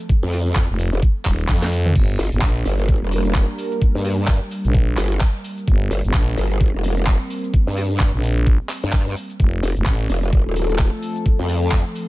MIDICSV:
0, 0, Header, 1, 5, 480
1, 0, Start_track
1, 0, Key_signature, -2, "minor"
1, 0, Tempo, 465116
1, 98, Time_signature, 4, 2, 24, 8
1, 12468, End_track
2, 0, Start_track
2, 0, Title_t, "Analog synth pad"
2, 0, Program_c, 0, 89
2, 0, Note_on_c, 0, 53, 79
2, 0, Note_on_c, 0, 57, 72
2, 0, Note_on_c, 0, 60, 71
2, 0, Note_on_c, 0, 69, 88
2, 1976, Note_off_c, 0, 53, 0
2, 1977, Note_off_c, 0, 57, 0
2, 1977, Note_off_c, 0, 60, 0
2, 1977, Note_off_c, 0, 69, 0
2, 2017, Note_on_c, 0, 55, 81
2, 2018, Note_on_c, 0, 58, 72
2, 2018, Note_on_c, 0, 62, 70
2, 2018, Note_on_c, 0, 70, 87
2, 5819, Note_off_c, 0, 62, 0
2, 5859, Note_on_c, 0, 60, 72
2, 9656, Note_off_c, 0, 55, 0
2, 9657, Note_off_c, 0, 58, 0
2, 9657, Note_off_c, 0, 70, 0
2, 9699, Note_on_c, 0, 53, 78
2, 9699, Note_on_c, 0, 57, 73
2, 9699, Note_on_c, 0, 69, 83
2, 12468, Note_off_c, 0, 53, 0
2, 12468, Note_off_c, 0, 57, 0
2, 12468, Note_off_c, 0, 60, 0
2, 12468, Note_off_c, 0, 69, 0
2, 12468, End_track
3, 0, Start_track
3, 0, Title_t, "FM bass"
3, 0, Program_c, 1, 39
3, 717, Note_on_c, 1, 29, 97
3, 935, Note_off_c, 1, 29, 0
3, 1298, Note_on_c, 1, 27, 99
3, 1522, Note_off_c, 1, 27, 0
3, 1538, Note_on_c, 1, 41, 103
3, 2002, Note_off_c, 1, 41, 0
3, 2018, Note_on_c, 1, 31, 101
3, 2242, Note_off_c, 1, 31, 0
3, 2398, Note_on_c, 1, 31, 101
3, 2482, Note_off_c, 1, 31, 0
3, 2498, Note_on_c, 1, 34, 93
3, 2722, Note_off_c, 1, 34, 0
3, 4797, Note_on_c, 1, 34, 101
3, 5122, Note_off_c, 1, 34, 0
3, 5858, Note_on_c, 1, 31, 101
3, 6082, Note_off_c, 1, 31, 0
3, 6237, Note_on_c, 1, 31, 94
3, 6322, Note_off_c, 1, 31, 0
3, 6338, Note_on_c, 1, 34, 92
3, 6562, Note_off_c, 1, 34, 0
3, 8397, Note_on_c, 1, 34, 98
3, 8855, Note_off_c, 1, 34, 0
3, 9698, Note_on_c, 1, 29, 99
3, 9922, Note_off_c, 1, 29, 0
3, 10078, Note_on_c, 1, 29, 100
3, 10162, Note_off_c, 1, 29, 0
3, 10178, Note_on_c, 1, 33, 96
3, 10402, Note_off_c, 1, 33, 0
3, 12468, End_track
4, 0, Start_track
4, 0, Title_t, "Wobble bass"
4, 0, Program_c, 2, 39
4, 237, Note_on_c, 2, 41, 97
4, 695, Note_off_c, 2, 41, 0
4, 958, Note_on_c, 2, 29, 92
4, 1042, Note_off_c, 2, 29, 0
4, 2259, Note_on_c, 2, 31, 94
4, 2375, Note_off_c, 2, 31, 0
4, 2738, Note_on_c, 2, 31, 98
4, 3095, Note_off_c, 2, 31, 0
4, 3118, Note_on_c, 2, 29, 106
4, 3575, Note_off_c, 2, 29, 0
4, 4078, Note_on_c, 2, 43, 95
4, 4535, Note_off_c, 2, 43, 0
4, 5138, Note_on_c, 2, 31, 104
4, 5362, Note_off_c, 2, 31, 0
4, 6097, Note_on_c, 2, 31, 99
4, 6215, Note_off_c, 2, 31, 0
4, 6578, Note_on_c, 2, 31, 93
4, 6935, Note_off_c, 2, 31, 0
4, 6958, Note_on_c, 2, 29, 102
4, 7415, Note_off_c, 2, 29, 0
4, 7918, Note_on_c, 2, 43, 97
4, 8375, Note_off_c, 2, 43, 0
4, 9118, Note_on_c, 2, 43, 101
4, 9442, Note_off_c, 2, 43, 0
4, 9938, Note_on_c, 2, 29, 93
4, 10055, Note_off_c, 2, 29, 0
4, 10418, Note_on_c, 2, 29, 99
4, 10775, Note_off_c, 2, 29, 0
4, 10798, Note_on_c, 2, 27, 104
4, 11255, Note_off_c, 2, 27, 0
4, 11758, Note_on_c, 2, 41, 91
4, 12215, Note_off_c, 2, 41, 0
4, 12468, End_track
5, 0, Start_track
5, 0, Title_t, "Drums"
5, 1, Note_on_c, 9, 69, 46
5, 97, Note_on_c, 9, 36, 115
5, 98, Note_on_c, 9, 42, 71
5, 102, Note_off_c, 9, 69, 0
5, 102, Note_on_c, 9, 69, 37
5, 201, Note_off_c, 9, 36, 0
5, 201, Note_off_c, 9, 42, 0
5, 205, Note_off_c, 9, 69, 0
5, 338, Note_on_c, 9, 46, 99
5, 342, Note_on_c, 9, 69, 83
5, 441, Note_off_c, 9, 46, 0
5, 445, Note_off_c, 9, 69, 0
5, 478, Note_on_c, 9, 42, 60
5, 482, Note_on_c, 9, 69, 49
5, 572, Note_on_c, 9, 39, 116
5, 578, Note_off_c, 9, 42, 0
5, 578, Note_on_c, 9, 36, 111
5, 578, Note_on_c, 9, 42, 69
5, 582, Note_off_c, 9, 69, 0
5, 582, Note_on_c, 9, 69, 35
5, 675, Note_off_c, 9, 39, 0
5, 681, Note_off_c, 9, 36, 0
5, 681, Note_off_c, 9, 42, 0
5, 685, Note_off_c, 9, 69, 0
5, 818, Note_on_c, 9, 46, 90
5, 822, Note_on_c, 9, 69, 81
5, 921, Note_off_c, 9, 46, 0
5, 925, Note_off_c, 9, 69, 0
5, 958, Note_on_c, 9, 42, 52
5, 962, Note_on_c, 9, 69, 44
5, 1058, Note_off_c, 9, 42, 0
5, 1058, Note_on_c, 9, 36, 114
5, 1058, Note_on_c, 9, 42, 68
5, 1062, Note_off_c, 9, 69, 0
5, 1062, Note_on_c, 9, 69, 35
5, 1161, Note_off_c, 9, 36, 0
5, 1162, Note_off_c, 9, 42, 0
5, 1166, Note_off_c, 9, 69, 0
5, 1292, Note_on_c, 9, 39, 62
5, 1298, Note_on_c, 9, 36, 60
5, 1298, Note_on_c, 9, 46, 100
5, 1302, Note_on_c, 9, 69, 82
5, 1395, Note_off_c, 9, 39, 0
5, 1401, Note_off_c, 9, 36, 0
5, 1401, Note_off_c, 9, 46, 0
5, 1405, Note_off_c, 9, 69, 0
5, 1437, Note_on_c, 9, 42, 55
5, 1441, Note_on_c, 9, 69, 48
5, 1532, Note_on_c, 9, 39, 118
5, 1538, Note_off_c, 9, 42, 0
5, 1538, Note_on_c, 9, 36, 117
5, 1538, Note_on_c, 9, 42, 52
5, 1538, Note_on_c, 9, 48, 61
5, 1542, Note_off_c, 9, 69, 0
5, 1542, Note_on_c, 9, 69, 33
5, 1607, Note_off_c, 9, 42, 0
5, 1607, Note_on_c, 9, 42, 69
5, 1635, Note_off_c, 9, 39, 0
5, 1641, Note_off_c, 9, 36, 0
5, 1641, Note_off_c, 9, 48, 0
5, 1645, Note_off_c, 9, 69, 0
5, 1676, Note_on_c, 9, 38, 64
5, 1710, Note_off_c, 9, 42, 0
5, 1777, Note_on_c, 9, 46, 90
5, 1780, Note_off_c, 9, 38, 0
5, 1781, Note_on_c, 9, 69, 84
5, 1880, Note_off_c, 9, 46, 0
5, 1884, Note_off_c, 9, 69, 0
5, 1917, Note_on_c, 9, 42, 53
5, 1917, Note_on_c, 9, 45, 84
5, 1921, Note_on_c, 9, 69, 44
5, 2018, Note_off_c, 9, 42, 0
5, 2018, Note_on_c, 9, 36, 117
5, 2018, Note_on_c, 9, 42, 69
5, 2018, Note_on_c, 9, 49, 76
5, 2020, Note_off_c, 9, 45, 0
5, 2022, Note_off_c, 9, 69, 0
5, 2022, Note_on_c, 9, 69, 34
5, 2121, Note_off_c, 9, 36, 0
5, 2121, Note_off_c, 9, 42, 0
5, 2121, Note_off_c, 9, 49, 0
5, 2125, Note_off_c, 9, 69, 0
5, 2258, Note_on_c, 9, 46, 105
5, 2262, Note_on_c, 9, 69, 78
5, 2361, Note_off_c, 9, 46, 0
5, 2365, Note_off_c, 9, 69, 0
5, 2397, Note_on_c, 9, 42, 58
5, 2401, Note_on_c, 9, 69, 46
5, 2492, Note_on_c, 9, 39, 119
5, 2498, Note_off_c, 9, 42, 0
5, 2498, Note_on_c, 9, 36, 117
5, 2498, Note_on_c, 9, 42, 67
5, 2501, Note_off_c, 9, 69, 0
5, 2501, Note_on_c, 9, 69, 32
5, 2595, Note_off_c, 9, 39, 0
5, 2601, Note_off_c, 9, 36, 0
5, 2601, Note_off_c, 9, 42, 0
5, 2605, Note_off_c, 9, 69, 0
5, 2738, Note_on_c, 9, 46, 94
5, 2742, Note_on_c, 9, 69, 80
5, 2841, Note_off_c, 9, 46, 0
5, 2845, Note_off_c, 9, 69, 0
5, 2878, Note_on_c, 9, 42, 55
5, 2881, Note_on_c, 9, 69, 45
5, 2978, Note_off_c, 9, 42, 0
5, 2978, Note_on_c, 9, 36, 118
5, 2978, Note_on_c, 9, 42, 69
5, 2982, Note_off_c, 9, 69, 0
5, 2982, Note_on_c, 9, 69, 32
5, 3081, Note_off_c, 9, 36, 0
5, 3081, Note_off_c, 9, 42, 0
5, 3085, Note_off_c, 9, 69, 0
5, 3217, Note_on_c, 9, 46, 104
5, 3221, Note_on_c, 9, 69, 81
5, 3321, Note_off_c, 9, 46, 0
5, 3324, Note_off_c, 9, 69, 0
5, 3357, Note_on_c, 9, 42, 54
5, 3361, Note_on_c, 9, 69, 46
5, 3451, Note_on_c, 9, 39, 118
5, 3457, Note_off_c, 9, 42, 0
5, 3457, Note_on_c, 9, 42, 49
5, 3458, Note_on_c, 9, 36, 119
5, 3461, Note_off_c, 9, 69, 0
5, 3461, Note_on_c, 9, 69, 33
5, 3527, Note_off_c, 9, 42, 0
5, 3527, Note_on_c, 9, 42, 67
5, 3555, Note_off_c, 9, 39, 0
5, 3561, Note_off_c, 9, 36, 0
5, 3565, Note_off_c, 9, 69, 0
5, 3631, Note_off_c, 9, 42, 0
5, 3698, Note_on_c, 9, 46, 94
5, 3702, Note_on_c, 9, 69, 82
5, 3801, Note_off_c, 9, 46, 0
5, 3805, Note_off_c, 9, 69, 0
5, 3838, Note_on_c, 9, 42, 54
5, 3842, Note_on_c, 9, 69, 43
5, 3938, Note_off_c, 9, 42, 0
5, 3938, Note_on_c, 9, 36, 122
5, 3938, Note_on_c, 9, 42, 70
5, 3942, Note_off_c, 9, 69, 0
5, 3942, Note_on_c, 9, 69, 34
5, 4041, Note_off_c, 9, 36, 0
5, 4042, Note_off_c, 9, 42, 0
5, 4046, Note_off_c, 9, 69, 0
5, 4177, Note_on_c, 9, 46, 108
5, 4181, Note_on_c, 9, 69, 75
5, 4280, Note_off_c, 9, 46, 0
5, 4284, Note_off_c, 9, 69, 0
5, 4317, Note_on_c, 9, 42, 58
5, 4321, Note_on_c, 9, 69, 45
5, 4412, Note_on_c, 9, 39, 123
5, 4418, Note_off_c, 9, 42, 0
5, 4418, Note_on_c, 9, 36, 121
5, 4418, Note_on_c, 9, 42, 65
5, 4422, Note_off_c, 9, 69, 0
5, 4422, Note_on_c, 9, 69, 32
5, 4515, Note_off_c, 9, 39, 0
5, 4521, Note_off_c, 9, 36, 0
5, 4521, Note_off_c, 9, 42, 0
5, 4525, Note_off_c, 9, 69, 0
5, 4657, Note_on_c, 9, 46, 94
5, 4661, Note_on_c, 9, 69, 74
5, 4760, Note_off_c, 9, 46, 0
5, 4764, Note_off_c, 9, 69, 0
5, 4797, Note_on_c, 9, 42, 52
5, 4801, Note_on_c, 9, 69, 43
5, 4898, Note_off_c, 9, 42, 0
5, 4898, Note_on_c, 9, 36, 127
5, 4898, Note_on_c, 9, 42, 65
5, 4902, Note_off_c, 9, 69, 0
5, 4902, Note_on_c, 9, 69, 32
5, 5001, Note_off_c, 9, 36, 0
5, 5001, Note_off_c, 9, 42, 0
5, 5005, Note_off_c, 9, 69, 0
5, 5132, Note_on_c, 9, 39, 66
5, 5138, Note_on_c, 9, 46, 110
5, 5141, Note_on_c, 9, 69, 76
5, 5235, Note_off_c, 9, 39, 0
5, 5241, Note_off_c, 9, 46, 0
5, 5245, Note_off_c, 9, 69, 0
5, 5277, Note_on_c, 9, 42, 56
5, 5281, Note_on_c, 9, 69, 44
5, 5372, Note_on_c, 9, 39, 127
5, 5378, Note_off_c, 9, 42, 0
5, 5378, Note_on_c, 9, 36, 127
5, 5378, Note_on_c, 9, 42, 50
5, 5382, Note_off_c, 9, 69, 0
5, 5382, Note_on_c, 9, 69, 32
5, 5448, Note_off_c, 9, 42, 0
5, 5448, Note_on_c, 9, 42, 67
5, 5475, Note_off_c, 9, 39, 0
5, 5481, Note_off_c, 9, 36, 0
5, 5485, Note_off_c, 9, 69, 0
5, 5551, Note_off_c, 9, 42, 0
5, 5618, Note_on_c, 9, 46, 98
5, 5622, Note_on_c, 9, 69, 79
5, 5721, Note_off_c, 9, 46, 0
5, 5725, Note_off_c, 9, 69, 0
5, 5757, Note_on_c, 9, 42, 52
5, 5761, Note_on_c, 9, 69, 43
5, 5858, Note_off_c, 9, 42, 0
5, 5858, Note_on_c, 9, 36, 123
5, 5858, Note_on_c, 9, 42, 67
5, 5862, Note_off_c, 9, 69, 0
5, 5862, Note_on_c, 9, 69, 31
5, 5961, Note_off_c, 9, 36, 0
5, 5961, Note_off_c, 9, 42, 0
5, 5965, Note_off_c, 9, 69, 0
5, 6097, Note_on_c, 9, 46, 111
5, 6101, Note_on_c, 9, 69, 75
5, 6201, Note_off_c, 9, 46, 0
5, 6204, Note_off_c, 9, 69, 0
5, 6237, Note_on_c, 9, 42, 56
5, 6241, Note_on_c, 9, 69, 45
5, 6331, Note_on_c, 9, 39, 124
5, 6337, Note_off_c, 9, 42, 0
5, 6337, Note_on_c, 9, 42, 63
5, 6338, Note_on_c, 9, 36, 127
5, 6341, Note_off_c, 9, 69, 0
5, 6341, Note_on_c, 9, 69, 32
5, 6435, Note_off_c, 9, 39, 0
5, 6440, Note_off_c, 9, 42, 0
5, 6441, Note_off_c, 9, 36, 0
5, 6444, Note_off_c, 9, 69, 0
5, 6577, Note_on_c, 9, 46, 97
5, 6581, Note_on_c, 9, 69, 75
5, 6681, Note_off_c, 9, 46, 0
5, 6685, Note_off_c, 9, 69, 0
5, 6717, Note_on_c, 9, 42, 48
5, 6721, Note_on_c, 9, 69, 42
5, 6818, Note_off_c, 9, 42, 0
5, 6818, Note_on_c, 9, 36, 126
5, 6818, Note_on_c, 9, 42, 62
5, 6822, Note_off_c, 9, 69, 0
5, 6822, Note_on_c, 9, 69, 32
5, 6921, Note_off_c, 9, 36, 0
5, 6921, Note_off_c, 9, 42, 0
5, 6925, Note_off_c, 9, 69, 0
5, 7058, Note_on_c, 9, 46, 112
5, 7062, Note_on_c, 9, 69, 75
5, 7161, Note_off_c, 9, 46, 0
5, 7165, Note_off_c, 9, 69, 0
5, 7197, Note_on_c, 9, 42, 51
5, 7201, Note_on_c, 9, 69, 45
5, 7292, Note_on_c, 9, 39, 124
5, 7298, Note_off_c, 9, 42, 0
5, 7298, Note_on_c, 9, 36, 127
5, 7298, Note_on_c, 9, 42, 46
5, 7302, Note_off_c, 9, 69, 0
5, 7302, Note_on_c, 9, 69, 33
5, 7367, Note_off_c, 9, 42, 0
5, 7367, Note_on_c, 9, 42, 63
5, 7395, Note_off_c, 9, 39, 0
5, 7401, Note_off_c, 9, 36, 0
5, 7405, Note_off_c, 9, 69, 0
5, 7470, Note_off_c, 9, 42, 0
5, 7538, Note_on_c, 9, 46, 99
5, 7542, Note_on_c, 9, 69, 75
5, 7641, Note_off_c, 9, 46, 0
5, 7645, Note_off_c, 9, 69, 0
5, 7677, Note_on_c, 9, 42, 52
5, 7681, Note_on_c, 9, 69, 43
5, 7777, Note_off_c, 9, 42, 0
5, 7777, Note_on_c, 9, 42, 63
5, 7778, Note_on_c, 9, 36, 124
5, 7781, Note_off_c, 9, 69, 0
5, 7781, Note_on_c, 9, 69, 34
5, 7881, Note_off_c, 9, 36, 0
5, 7881, Note_off_c, 9, 42, 0
5, 7885, Note_off_c, 9, 69, 0
5, 8017, Note_on_c, 9, 46, 106
5, 8021, Note_on_c, 9, 69, 75
5, 8121, Note_off_c, 9, 46, 0
5, 8124, Note_off_c, 9, 69, 0
5, 8158, Note_on_c, 9, 42, 53
5, 8161, Note_on_c, 9, 69, 44
5, 8252, Note_on_c, 9, 39, 115
5, 8258, Note_off_c, 9, 42, 0
5, 8258, Note_on_c, 9, 36, 119
5, 8258, Note_on_c, 9, 42, 63
5, 8262, Note_off_c, 9, 69, 0
5, 8262, Note_on_c, 9, 69, 33
5, 8355, Note_off_c, 9, 39, 0
5, 8361, Note_off_c, 9, 36, 0
5, 8361, Note_off_c, 9, 42, 0
5, 8365, Note_off_c, 9, 69, 0
5, 8497, Note_on_c, 9, 46, 94
5, 8501, Note_on_c, 9, 69, 75
5, 8601, Note_off_c, 9, 46, 0
5, 8605, Note_off_c, 9, 69, 0
5, 8637, Note_on_c, 9, 42, 49
5, 8641, Note_on_c, 9, 69, 42
5, 8738, Note_off_c, 9, 42, 0
5, 8738, Note_on_c, 9, 36, 127
5, 8738, Note_on_c, 9, 42, 60
5, 8741, Note_off_c, 9, 69, 0
5, 8741, Note_on_c, 9, 69, 32
5, 8841, Note_off_c, 9, 36, 0
5, 8841, Note_off_c, 9, 42, 0
5, 8845, Note_off_c, 9, 69, 0
5, 8971, Note_on_c, 9, 39, 59
5, 8977, Note_on_c, 9, 46, 113
5, 8981, Note_on_c, 9, 69, 77
5, 9074, Note_off_c, 9, 39, 0
5, 9080, Note_off_c, 9, 46, 0
5, 9084, Note_off_c, 9, 69, 0
5, 9117, Note_on_c, 9, 42, 51
5, 9121, Note_on_c, 9, 69, 46
5, 9211, Note_on_c, 9, 39, 114
5, 9217, Note_off_c, 9, 42, 0
5, 9217, Note_on_c, 9, 42, 46
5, 9218, Note_on_c, 9, 36, 125
5, 9221, Note_off_c, 9, 69, 0
5, 9221, Note_on_c, 9, 69, 32
5, 9287, Note_off_c, 9, 42, 0
5, 9287, Note_on_c, 9, 42, 62
5, 9315, Note_off_c, 9, 39, 0
5, 9321, Note_off_c, 9, 36, 0
5, 9324, Note_off_c, 9, 69, 0
5, 9390, Note_off_c, 9, 42, 0
5, 9458, Note_on_c, 9, 46, 96
5, 9462, Note_on_c, 9, 69, 78
5, 9561, Note_off_c, 9, 46, 0
5, 9565, Note_off_c, 9, 69, 0
5, 9598, Note_on_c, 9, 42, 50
5, 9601, Note_on_c, 9, 69, 43
5, 9698, Note_off_c, 9, 42, 0
5, 9698, Note_on_c, 9, 36, 120
5, 9698, Note_on_c, 9, 42, 65
5, 9701, Note_off_c, 9, 69, 0
5, 9701, Note_on_c, 9, 69, 34
5, 9801, Note_off_c, 9, 36, 0
5, 9801, Note_off_c, 9, 42, 0
5, 9805, Note_off_c, 9, 69, 0
5, 9938, Note_on_c, 9, 46, 107
5, 9942, Note_on_c, 9, 69, 78
5, 10041, Note_off_c, 9, 46, 0
5, 10045, Note_off_c, 9, 69, 0
5, 10077, Note_on_c, 9, 42, 53
5, 10081, Note_on_c, 9, 69, 45
5, 10171, Note_on_c, 9, 39, 115
5, 10177, Note_off_c, 9, 42, 0
5, 10177, Note_on_c, 9, 42, 62
5, 10178, Note_on_c, 9, 36, 122
5, 10181, Note_off_c, 9, 69, 0
5, 10181, Note_on_c, 9, 69, 32
5, 10274, Note_off_c, 9, 39, 0
5, 10280, Note_off_c, 9, 42, 0
5, 10281, Note_off_c, 9, 36, 0
5, 10284, Note_off_c, 9, 69, 0
5, 10418, Note_on_c, 9, 46, 93
5, 10421, Note_on_c, 9, 69, 78
5, 10521, Note_off_c, 9, 46, 0
5, 10525, Note_off_c, 9, 69, 0
5, 10557, Note_on_c, 9, 42, 50
5, 10561, Note_on_c, 9, 69, 44
5, 10658, Note_off_c, 9, 42, 0
5, 10658, Note_on_c, 9, 36, 124
5, 10658, Note_on_c, 9, 42, 62
5, 10661, Note_off_c, 9, 69, 0
5, 10661, Note_on_c, 9, 69, 34
5, 10761, Note_off_c, 9, 36, 0
5, 10761, Note_off_c, 9, 42, 0
5, 10765, Note_off_c, 9, 69, 0
5, 10897, Note_on_c, 9, 46, 105
5, 10901, Note_on_c, 9, 69, 78
5, 11001, Note_off_c, 9, 46, 0
5, 11005, Note_off_c, 9, 69, 0
5, 11037, Note_on_c, 9, 42, 51
5, 11041, Note_on_c, 9, 69, 47
5, 11131, Note_on_c, 9, 39, 111
5, 11137, Note_off_c, 9, 42, 0
5, 11137, Note_on_c, 9, 42, 48
5, 11138, Note_on_c, 9, 36, 120
5, 11141, Note_off_c, 9, 69, 0
5, 11141, Note_on_c, 9, 69, 33
5, 11207, Note_off_c, 9, 42, 0
5, 11207, Note_on_c, 9, 42, 65
5, 11235, Note_off_c, 9, 39, 0
5, 11241, Note_off_c, 9, 36, 0
5, 11244, Note_off_c, 9, 69, 0
5, 11310, Note_off_c, 9, 42, 0
5, 11377, Note_on_c, 9, 46, 94
5, 11381, Note_on_c, 9, 69, 79
5, 11480, Note_off_c, 9, 46, 0
5, 11484, Note_off_c, 9, 69, 0
5, 11517, Note_on_c, 9, 42, 52
5, 11520, Note_on_c, 9, 69, 46
5, 11617, Note_off_c, 9, 42, 0
5, 11617, Note_on_c, 9, 42, 67
5, 11618, Note_on_c, 9, 36, 114
5, 11621, Note_off_c, 9, 69, 0
5, 11621, Note_on_c, 9, 69, 37
5, 11720, Note_off_c, 9, 42, 0
5, 11721, Note_off_c, 9, 36, 0
5, 11724, Note_off_c, 9, 69, 0
5, 11856, Note_on_c, 9, 46, 103
5, 11860, Note_on_c, 9, 69, 79
5, 11959, Note_off_c, 9, 46, 0
5, 11963, Note_off_c, 9, 69, 0
5, 11996, Note_on_c, 9, 42, 55
5, 12000, Note_on_c, 9, 69, 47
5, 12091, Note_on_c, 9, 39, 112
5, 12097, Note_off_c, 9, 42, 0
5, 12097, Note_on_c, 9, 42, 64
5, 12098, Note_on_c, 9, 36, 115
5, 12101, Note_off_c, 9, 69, 0
5, 12101, Note_on_c, 9, 69, 35
5, 12194, Note_off_c, 9, 39, 0
5, 12200, Note_off_c, 9, 42, 0
5, 12201, Note_off_c, 9, 36, 0
5, 12204, Note_off_c, 9, 69, 0
5, 12337, Note_on_c, 9, 46, 90
5, 12341, Note_on_c, 9, 69, 83
5, 12440, Note_off_c, 9, 46, 0
5, 12444, Note_off_c, 9, 69, 0
5, 12468, End_track
0, 0, End_of_file